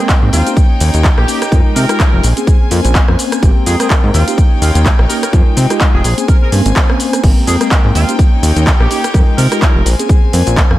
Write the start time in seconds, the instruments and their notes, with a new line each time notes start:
Already playing: string section C4 A#4 G5
0.00 tine electric piano G#3 A#3 C4 A#4
0.09 kick, clap, closed hi-hat, shaker
0.23 analog synth bass G#2
0.33 analog synth bass D#2, horn section F4, open hi-hat, shaker
0.45 tine electric piano A#3 C#4 D#4 G4, closed hi-hat, shaker
0.56 string section D#4 C#5, kick, closed hi-hat, shaker
0.80 analog synth bass D#2, open hi-hat, shaker
0.94 analog synth bass D#2, closed hi-hat, shaker
1.04 kick, clap, closed hi-hat, shaker
1.18 analog synth bass A#1, horn section G4, cross-stick
1.28 tine electric piano A#3 C#4 D#4 G4, open hi-hat, shaker
1.42 cross-stick, closed hi-hat, shaker
1.51 analog synth bass F2, tine electric piano G#3 D#4 F4 A#4, string section G#3, kick, closed hi-hat, shaker
1.75 analog synth bass C3, horn section A#4, open hi-hat, shaker
1.89 tine electric piano G#3 D#4 F4 G4, cross-stick, closed hi-hat, shaker
2.00 kick, clap, closed hi-hat, shaker
2.13 analog synth bass F1
2.23 analog synth bass A#1, string section C5 G#5, open hi-hat, shaker
2.36 tine electric piano A#3 C4 C#4 G#4, closed hi-hat, shaker
2.47 kick, closed hi-hat, shaker
2.71 analog synth bass F2, tine electric piano A#3 C4 C#4 A#4, open hi-hat, shaker
2.85 analog synth bass A#1, closed hi-hat, shaker
2.95 kick, clap, closed hi-hat, shaker
3.08 analog synth bass F2, tine electric piano A#3 C4 C#4 C5, cross-stick
3.19 open hi-hat, shaker
3.32 cross-stick, closed hi-hat, shaker
3.42 analog synth bass G#1, tine electric piano G#3 A#3 C4 G4, string section C4 A#4 G5, kick, closed hi-hat, shaker
3.66 analog synth bass F2, horn section G#4, open hi-hat, shaker
3.79 tine electric piano G#3 A#3 C4 A#4, horn section G#4, cross-stick, closed hi-hat, shaker
3.90 kick, clap, closed hi-hat, shaker
4.04 analog synth bass G#2
4.14 analog synth bass D#2, horn section F4, open hi-hat, shaker
4.26 tine electric piano A#3 C#4 D#4 G4, closed hi-hat, shaker
4.38 string section D#4 C#5, kick, closed hi-hat, shaker
4.62 analog synth bass D#2, horn section F4, open hi-hat, shaker
4.75 analog synth bass D#2, closed hi-hat, shaker
4.85 kick, clap, closed hi-hat, shaker
4.99 analog synth bass A#1, cross-stick
5.09 tine electric piano A#3 C#4 D#4 G4, horn section A#4, open hi-hat, shaker
5.23 horn section A#4, cross-stick, closed hi-hat, shaker
5.32 analog synth bass F2, tine electric piano G#3 D#4 F4 A#4, string section G#3 D#4 G5, kick, closed hi-hat, shaker
5.57 analog synth bass C3, open hi-hat, shaker
5.70 tine electric piano G#3 D#4 F4 G4, cross-stick, closed hi-hat, shaker
5.81 kick, clap, closed hi-hat, shaker
5.94 analog synth bass F1, horn section G#4
6.04 analog synth bass A#1, horn section G#4, string section C5 G#5, open hi-hat, shaker
6.17 tine electric piano A#3 C4 C#4 G#4, closed hi-hat, shaker
6.28 horn section A#4, kick, closed hi-hat, shaker
6.42 horn section A#4
6.51 analog synth bass G2, tine electric piano A#3 C4 C#4 A#4, open hi-hat, shaker
6.65 analog synth bass G#1, closed hi-hat, shaker
6.76 kick, clap, closed hi-hat, shaker
6.89 tine electric piano A#3 C4 C#4 C5, cross-stick
7.00 open hi-hat, shaker
7.13 cross-stick, closed hi-hat, shaker
7.23 analog synth bass G#1, tine electric piano G#3 A#3 C4 G4, string section C4 A#4 G5, kick, closed hi-hat, crash, shaker
7.47 analog synth bass F2, horn section G#4, open hi-hat, shaker
7.60 tine electric piano G#3 A#3 C4 A#4, horn section G#4, cross-stick, closed hi-hat, shaker
7.71 kick, clap, closed hi-hat, shaker
7.84 analog synth bass G#2
7.95 analog synth bass D#2, horn section F4, open hi-hat, shaker
8.08 tine electric piano A#3 C#4 D#4 G4, closed hi-hat, shaker
8.19 string section D#4 C#5, kick, closed hi-hat, shaker
8.43 analog synth bass D#2, open hi-hat, shaker
8.56 analog synth bass D#2, closed hi-hat, shaker
8.67 kick, clap, closed hi-hat, shaker
8.80 analog synth bass A#1, horn section G4, cross-stick
8.90 tine electric piano A#3 C#4 D#4 G4, open hi-hat, shaker
9.04 cross-stick, closed hi-hat, shaker
9.14 analog synth bass F2, tine electric piano G#3 D#4 F4 A#4, string section G#3 D#4, kick, closed hi-hat, shaker
9.38 analog synth bass C3, horn section A#4, open hi-hat, shaker
9.51 tine electric piano G#3 D#4 F4 G4, cross-stick, closed hi-hat, shaker
9.62 kick, clap, closed hi-hat, shaker
9.75 analog synth bass F1
9.86 analog synth bass A#1, string section C5 G#5, open hi-hat, shaker
9.99 tine electric piano A#3 C4 C#4 G#4, closed hi-hat, shaker
10.09 kick, closed hi-hat, shaker
10.33 analog synth bass F2, tine electric piano A#3 C4 C#4 A#4, open hi-hat, shaker
10.47 analog synth bass A#1, closed hi-hat, shaker
10.57 kick, clap, closed hi-hat, shaker
10.70 analog synth bass F2, tine electric piano A#3 C4 C#4 C5, cross-stick